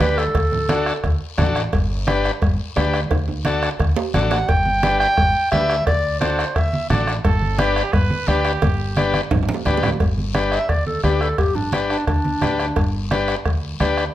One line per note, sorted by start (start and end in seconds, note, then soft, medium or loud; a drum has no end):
0.00 0.28 D2 loud
0.00 0.24 D4 medium
0.00 0.24 G4 medium
0.00 0.19 B4 loud
0.00 0.25 B4 medium
0.00 bombo rim medium
0.00 high conga medium
0.00 low timbale medium
0.00 short guiro medium
0.17 1.21 A4 medium
0.17 bombo rim medium
0.17 short guiro medium
0.35 0.90 D2 medium
0.35 bombo low medium
0.35 bombo rim medium
0.35 cowbell loud
0.35 high conga soft
0.35 long guiro medium
0.52 low conga medium
0.69 0.93 D4 medium
0.69 0.93 F#4 medium
0.69 0.94 A4 medium
0.69 bombo rim medium
0.69 high conga loud
0.69 short guiro medium
0.86 bombo rim medium
0.86 short guiro medium
1.04 1.18 D2 loud
1.04 bombo low medium
1.04 bombo rim medium
1.04 cowbell medium
1.04 high conga soft
1.04 long guiro medium
1.38 1.66 A1 loud
1.38 1.62 D4 medium
1.38 1.62 F#4 medium
1.38 1.63 A4 medium
1.38 bombo low medium
1.38 bombo rim medium
1.38 high conga medium
1.38 low conga medium
1.38 low timbale medium
1.38 short guiro medium
1.55 bombo rim medium
1.55 short guiro medium
1.72 2.28 G1 medium
1.72 bombo low medium
1.72 bombo rim medium
1.72 cowbell medium
1.72 high conga soft
1.72 long guiro medium
2.07 2.31 D4 medium
2.07 2.31 G4 medium
2.07 2.32 B4 loud
2.07 bombo rim medium
2.07 high conga loud
2.07 short guiro medium
2.24 bombo rim medium
2.24 short guiro medium
2.42 2.56 G1 loud
2.42 bombo low medium
2.42 bombo rim medium
2.42 cowbell medium
2.42 high conga soft
2.42 long guiro medium
2.76 3.04 D2 loud
2.76 3.00 D4 medium
2.76 3.01 G4 medium
2.76 3.01 B4 medium
2.76 bombo rim medium
2.76 high conga medium
2.76 low timbale medium
2.76 short guiro medium
2.93 bombo rim medium
2.93 short guiro medium
3.11 3.66 D2 medium
3.11 bombo low medium
3.11 bombo rim medium
3.11 cowbell loud
3.11 high conga soft
3.11 high timbale medium
3.11 long guiro medium
3.28 high conga medium
3.28 high timbale medium
3.45 3.69 D4 medium
3.45 3.70 F#4 medium
3.45 3.70 A4 medium
3.45 bombo rim medium
3.45 high conga loud
3.45 short guiro medium
3.63 bombo rim medium
3.63 short guiro medium
3.79 3.94 D2 medium
3.79 bombo low medium
3.79 bombo rim medium
3.79 cowbell medium
3.79 high conga soft
3.79 long guiro medium
3.96 low timbale loud
4.14 4.42 A1 loud
4.14 4.38 D4 medium
4.14 4.38 F#4 medium
4.14 4.39 A4 medium
4.14 bombo rim medium
4.14 high conga medium
4.14 low conga medium
4.14 short guiro medium
4.31 4.50 F#5 medium
4.31 bombo rim medium
4.31 low timbale medium
4.31 short guiro medium
4.48 5.04 G1 medium
4.48 4.99 G5 loud
4.48 bombo low medium
4.48 bombo rim medium
4.48 cowbell loud
4.48 high conga soft
4.48 long guiro medium
4.66 high conga medium
4.83 5.07 D4 medium
4.83 5.07 G4 medium
4.83 5.08 B4 medium
4.83 bombo rim medium
4.83 high conga medium
4.83 short guiro medium
5.00 5.48 G5 loud
5.00 bombo rim medium
5.00 short guiro medium
5.17 5.32 G1 medium
5.17 bombo low medium
5.17 bombo rim medium
5.17 cowbell medium
5.17 long guiro medium
5.51 5.80 D2 loud
5.51 5.76 D4 medium
5.51 5.76 G4 medium
5.51 5.77 B4 medium
5.51 5.84 E5 loud
5.51 bombo rim medium
5.51 high conga medium
5.51 low timbale medium
5.51 short guiro medium
5.70 bombo rim medium
5.70 short guiro medium
5.86 6.42 D2 medium
5.86 6.18 D5 loud
5.86 bombo low medium
5.86 bombo rim medium
5.86 cowbell loud
5.86 high conga soft
5.86 long guiro medium
6.20 6.45 D4 medium
6.20 6.45 F#4 medium
6.20 6.45 A4 medium
6.20 6.57 C5 medium
6.20 bombo rim medium
6.20 high conga medium
6.20 short guiro medium
6.39 bombo rim medium
6.39 short guiro medium
6.55 6.70 D2 medium
6.55 6.89 E5 medium
6.55 bombo low medium
6.55 bombo rim medium
6.55 cowbell medium
6.55 high conga soft
6.55 long guiro medium
6.73 high conga medium
6.90 7.18 A1 loud
6.90 7.14 D4 medium
6.90 7.14 F#4 medium
6.90 7.15 A4 medium
6.90 7.14 D5 medium
6.90 bombo rim medium
6.90 high conga medium
6.90 low conga medium
6.90 short guiro medium
7.07 bombo rim medium
7.07 short guiro medium
7.24 7.80 G1 loud
7.24 7.60 A4 medium
7.24 bombo low medium
7.24 bombo rim medium
7.24 cowbell loud
7.24 high conga soft
7.24 long guiro medium
7.42 high conga medium
7.58 7.83 D4 medium
7.58 7.95 G4 loud
7.58 7.83 G4 medium
7.58 7.83 B4 loud
7.58 bombo rim medium
7.58 high conga loud
7.58 short guiro medium
7.76 bombo rim medium
7.76 short guiro medium
7.93 8.07 G1 loud
7.93 8.29 B4 loud
7.93 bombo low medium
7.93 bombo rim medium
7.93 cowbell medium
7.93 high conga soft
7.93 long guiro medium
8.10 high conga medium
8.27 8.55 D2 loud
8.27 8.52 D4 medium
8.27 8.97 G4 medium
8.27 8.52 G4 medium
8.27 8.53 B4 medium
8.27 bombo rim medium
8.27 high conga medium
8.27 short guiro medium
8.45 bombo rim medium
8.45 short guiro medium
8.62 9.18 G1 medium
8.62 bombo low medium
8.62 bombo rim medium
8.62 cowbell loud
8.62 high conga loud
8.62 long guiro medium
8.97 9.21 D4 medium
8.97 9.21 G4 medium
8.97 9.21 B4 loud
8.97 bombo rim medium
8.97 high conga medium
8.97 short guiro medium
9.14 bombo rim medium
9.14 high conga medium
9.14 short guiro medium
9.31 9.45 G1 loud
9.31 bombo low medium
9.31 bombo rim medium
9.31 cowbell medium
9.31 low conga loud
9.31 high timbale loud
9.31 long guiro medium
9.43 high timbale loud
9.49 low conga loud
9.54 low timbale medium
9.65 9.93 D2 loud
9.65 9.90 D4 medium
9.65 9.90 G4 medium
9.65 9.90 B4 medium
9.65 bombo rim medium
9.65 low conga medium
9.65 short guiro medium
9.77 low timbale medium
9.83 bombo rim medium
9.83 low conga loud
9.83 short guiro medium
9.89 low timbale medium
10.00 10.56 G1 medium
10.00 bombo low medium
10.00 bombo rim medium
10.00 cowbell medium
10.00 high conga soft
10.00 long guiro medium
10.18 high conga medium
10.34 10.59 D4 medium
10.34 10.59 G4 medium
10.34 10.59 B4 medium
10.34 bombo rim medium
10.34 high conga medium
10.34 short guiro medium
10.52 10.71 E5 loud
10.52 bombo rim medium
10.52 short guiro medium
10.69 10.97 D2 medium
10.69 10.86 D5 medium
10.69 bombo low medium
10.69 bombo rim medium
10.69 cowbell medium
10.69 high conga soft
10.69 long guiro medium
10.86 11.03 A4 medium
10.86 high conga medium
11.04 11.31 D2 medium
11.04 11.28 D4 medium
11.04 11.23 G4 medium
11.04 11.28 G4 medium
11.04 11.28 B4 medium
11.04 bombo rim medium
11.04 high conga medium
11.04 low timbale medium
11.04 short guiro medium
11.21 11.38 A4 medium
11.21 bombo rim medium
11.21 short guiro medium
11.38 11.94 G1 medium
11.38 11.57 G4 medium
11.38 bombo low medium
11.38 bombo rim medium
11.38 cowbell loud
11.38 high conga soft
11.38 long guiro medium
11.55 11.73 D4 medium
11.55 low conga medium
11.72 11.97 D4 medium
11.72 11.97 G4 medium
11.72 11.98 B4 medium
11.72 bombo rim medium
11.72 high conga medium
11.72 short guiro medium
11.90 12.06 D4 medium
11.90 bombo rim medium
11.90 short guiro medium
12.07 12.35 D2 medium
12.07 13.08 D4 medium
12.07 bombo low medium
12.07 bombo rim medium
12.07 cowbell medium
12.07 high conga soft
12.07 long guiro medium
12.25 high conga medium
12.41 12.70 D2 medium
12.41 12.66 D4 medium
12.41 12.66 G4 medium
12.41 12.66 B4 medium
12.41 bombo rim medium
12.41 high conga medium
12.41 low conga medium
12.41 low timbale medium
12.41 short guiro medium
12.59 bombo rim medium
12.59 short guiro medium
12.76 13.32 G1 medium
12.76 bombo low medium
12.76 bombo rim medium
12.76 cowbell loud
12.76 high conga soft
12.76 long guiro medium
13.11 13.35 D4 medium
13.11 13.35 G4 medium
13.11 13.36 B4 medium
13.11 bombo rim medium
13.11 high conga medium
13.11 short guiro medium
13.28 bombo rim medium
13.28 short guiro medium
13.45 13.73 D2 medium
13.45 bombo low medium
13.45 bombo rim medium
13.45 cowbell medium
13.45 high conga soft
13.45 long guiro medium
13.80 14.08 D2 medium
13.80 14.05 D4 medium
13.80 14.05 G4 medium
13.80 14.05 B4 loud
13.80 bombo rim medium
13.80 high conga medium
13.80 short guiro medium
13.97 bombo rim medium
13.97 short guiro medium